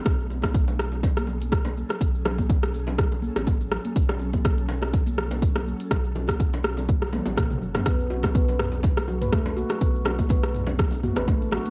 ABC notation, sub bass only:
X:1
M:4/4
L:1/16
Q:"Swing 16ths" 1/4=123
K:F#m
V:1 name="Sub bass" clef=bass
B,,,12- B,,,2 z2 | B,,,8- B,,,2 z A,,,3 z2 | B,,,12- B,,,2 z2 | B,,,8- B,,,2 z A,,,2 z F,,, z |
B,,,12- B,,,2 z2 | B,,,8- B,,,2 z A,,,3 z2 |]